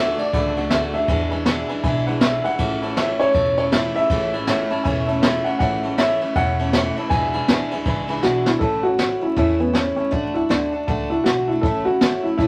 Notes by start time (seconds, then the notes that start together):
Already playing: D2 D3 A3 D4 F#4 E5 F#5
0.18 A3 D4 F#4 D5 F#5 A5, ride
0.33 C#2 D3 A3 D4 F#4 D5 F#5 B5, kick, ride
0.56 A3 D4 F#4 D5 F#5 A5, ride
0.70 D2 D3 A3 D4 F#4 D5 E5 F#5 A5, snare, ride
0.94 A3 D4 F#4 D5 E5 F#5 A5, ride
1.08 E2 B2 E3 G#3 D4 E4 B4 E5 G#5, kick, ride
1.31 E3 G#3 D4 E4 B4 E5 G#5, ride
1.45 E2 B2 E3 G#3 D4 E4 B4 E5 G#5, snare, ride
1.68 G#3 D4 E4 B4 E5 G#5, ride
1.72 E3
1.83 B1 E3 G#3 D4 B4 E5 G#5, kick, ride
1.88 E4
2.06 G#3 D4 E4 B4 E5 F#5, ride
2.11 E3
2.21 E2 B2 E3 G#3 B4 E5 G#5, snare, ride
2.25 D4 E4
2.43 G#3 D4 E4 B4 E5 F#5 G#5, ride
2.47 E3
2.58 A1 A2 E3 A3 C#4 E4 C#5 E5 A5, kick, ride
2.82 A3 C#4 E4 C#5 E5 A5, ride
2.97 A2 E3 A3 C#4 E4 C#5 E5 A5, snare, ride
3.19 A3 C#4 E4 C#5 E5 A5, ride
3.33 E1 E3 A3 C#4 E4 C#5 E5 A5, kick, ride
3.57 A3 C#4 E4 C#5 E5 A5, ride
3.72 A2 E3 A3 C#4 E4 C#5 E5 A5, snare, ride
3.95 A3 C#4 E4 C#5 E5 A5, ride
4.09 A1 A2 E3 A3 C#4 E4 C#5 E5 B5, kick, ride
4.33 A3 C#4 E4 C#5 E5 B5, ride
4.47 A2 E3 A3 C#4 E4 C#5 E5 F#5, snare, ride
4.70 A3 C#4 E4 C#5 E5 A5, ride
4.84 E1 E3 A3 C#4 E4 C#5 E5 G#5, kick, ride
5.07 A3 C#4 E4 C#5 E5 A5, ride
5.22 A2 E3 A3 C#4 E4 C#5 E5 B5, snare, ride
5.44 A3 C#4 E4 C#5 E5 F#5 A5, ride
5.59 A1 A2 E3 A3 C#4 E4 C#5 E5 F#5 A5, kick, ride
5.83 A3 C#4 E4 C#5 E5 A5, ride
5.98 A2 E3 A3 C#4 E4 C#5 E5 A5, snare, ride
6.21 A3 C#4 E4 C#5 E5 B5, ride
6.36 E1 E3 A3 C#4 C#5 E5 F#5 G#5, kick, ride
6.40 E4
6.59 A3 C#4 E4 C#5 E5 A5, ride
6.73 A2 E3 A3 C#4 E4 C#5 E5 A5, snare, ride
6.96 A3 C#4 E4 C#5 E5 A5, ride
7.10 E1 E2 B2 E3 G#3 D4 E4 B4 E5 G#5, kick, ride
7.33 E3 G#3 D4 E4 B4 E5 G#5, ride
7.48 D2 E2 B2 E3 G#3 D4 E4 B4 E5 G#5, snare, ride
7.71 G#3 D4 E4 B4 E5 G#5, ride
7.75 E3
7.85 C#2 E3 G#3 D4 E4 B4 E5 B5, kick, ride
8.08 E3 G#3 D4 E4 B4 E5 G#5, ride
8.23 B1 E2 B2 E3 G#3 D4 E4 F#4 B4 E5 G#5, snare
8.45 E3 G#3 D4 E4 B4 E5 G#5, snare
8.59 A1 A2 E3 A3 A4 C#5 E5 A5, kick, open hi-hat
8.63 C#4 E4
8.83 A3 C#4 E4 F#4 C#5 E5 A5
8.98 E3 A3 C#4 E4 C#5 E5 F#5, snare, open hi-hat
9.21 A3 C#4 E4 C#5 E5 G#5
9.36 E2 A2 E3 A3 C#4 E4 C#5 E5 A5, kick, open hi-hat
9.59 A3 B3 C#4 E4 C#5 E5 G#5
9.73 E3 A3 C#4 E4 C#5 E5 A5, snare, open hi-hat
9.96 A3 C#4 E4 C#5 E5 A5
10.11 D2 D3 A3 D4 F#4 D5 F#5 A5, kick, open hi-hat
10.34 D4 E4 F#4 D5 F#5 A5
10.38 A3
10.49 D2 D3 A3 D4 F#4 D5 F#5 A5, snare, open hi-hat
10.72 A3 D4 F#4 D5 F#5 A5
10.87 C#2 D3 A3 D4 F#4 D5 F#5 A5, kick, open hi-hat
11.10 A3 D4 E4 F#4 D5 F#5 A5
11.24 B1 D3 A3 D4 F#4 D5 F#5 A5, snare, open hi-hat
11.28 F#4
11.48 D4 E4 F#4 D5 F#5 A5
11.53 A3
11.61 A1 A2 E3 A4 C#5 E5 A5, kick, open hi-hat
11.66 A3 C#4 E4
11.85 C#4 E4 F#4 C#5 E5 A5
11.90 A3
12.00 E3 A3 C#4 E4 C#5 E5 F#5, snare, open hi-hat
12.23 C#4 E4 C#5 E5 A5
12.28 A3
12.38 E1 A2 E3 A3 C#4 E4 C#5 E5 A5, kick, open hi-hat
12.42 E4